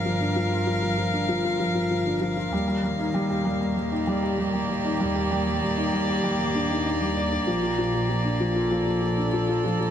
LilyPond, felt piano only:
\new Staff \with { instrumentName = "Felt piano" } { \clef bass \time 4/4 \key ees \lydian \tempo 4 = 97 f16 d'16 f16 f'16 f16 f16 f16 d'16 f16 f'16 f16 f16 f16 d'16 f16 f'16 | g16 g16 g16 ees'16 g16 g'16 g16 g16 g16 ees'16 g16 g'16 g16 g16 g16 ees'16 | g16 g'16 g16 g16 g16 ees'16 g16 g'16 g16 g16 d'16 ees'16 ees'16 g16 d''16 d'16 | f16 f'16 f16 f16 f16 d'16 f16 f'16 f16 f16 f16 d'16 f16 f'16 f16 f16 | }